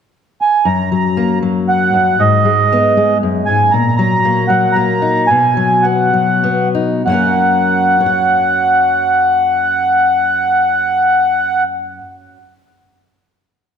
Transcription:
0.41 0.67 G#5 medium
0.65 1.92 F#2 medium
0.65 0.90 A#5 medium
0.91 1.41 F#3 soft
0.91 1.39 A#5 medium
1.17 2.23 A#3 soft
1.43 2.16 F#3 soft
1.69 2.21 F#5 medium
1.94 2.19 F#2 medium
2.20 3.22 G#2 medium
2.20 3.18 D#5 medium
2.45 2.96 G#3 soft
2.73 3.70 B3 soft
2.97 3.70 G#3 medium
3.23 3.48 F#2 medium
3.46 3.73 G#2 soft
3.46 3.73 G#5 medium
3.71 5.27 A#2 medium
3.71 3.95 A#5 medium
3.97 4.49 F#3 medium
3.97 4.50 A#5 medium
4.25 4.75 A#3 soft
4.48 5.56 F#3 soft
4.48 4.76 F#5 medium
4.72 5.26 A#3 soft
4.72 5.29 A#5 medium
5.02 5.26 D#4 medium
5.27 7.05 B2 medium
5.27 5.86 G#5 medium
5.57 6.12 F#3 soft
5.82 6.42 B3 soft
5.82 6.68 F#5 medium
6.14 7.01 F#3 soft
6.44 7.01 B3 soft
6.75 7.02 D#4 soft
7.06 11.99 F#2 medium
7.06 12.00 F#3 medium
7.06 12.02 A#3 soft
7.06 11.64 F#5 medium
7.12 8.00 C#4 soft
7.12 8.06 A#4 soft
8.00 12.37 C#5 medium
8.06 12.40 F#5 medium

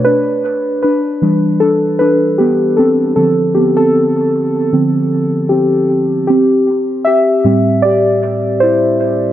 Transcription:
0.05 0.79 D4 medium
0.05 0.79 B4 loud
0.83 1.22 D4 medium
0.83 1.63 B4 medium
1.22 1.76 E3 medium
1.22 1.76 G3 medium
1.22 1.61 D4 medium
1.60 1.76 D4 medium
1.60 1.74 A4 loud
1.99 2.37 D4 medium
1.99 2.39 B4 medium
2.38 2.76 B3 medium
2.38 2.74 G4 medium
2.77 3.15 C4 medium
2.77 3.15 A4 medium
3.16 4.72 D3 medium
3.16 4.72 F3 medium
3.16 3.54 C4 medium
3.16 3.56 A4 loud
3.55 3.77 B3 medium
3.55 3.76 G4 medium
3.77 4.52 C4 medium
3.77 4.51 A4 medium
4.73 5.08 D3 soft
4.73 5.08 F3 soft
4.73 5.08 C4 medium
5.49 6.25 C4 medium
5.49 6.24 G4 medium
6.27 7.03 C4 medium
6.27 7.06 G4 loud
7.05 7.81 G4 medium
7.05 7.86 E5 loud
7.44 8.58 A2 medium
7.44 8.58 G3 medium
7.44 8.58 C4 medium
7.82 8.58 G4 medium
7.82 8.63 D5 loud
8.60 9.33 E4 medium
8.60 9.33 C5 loud

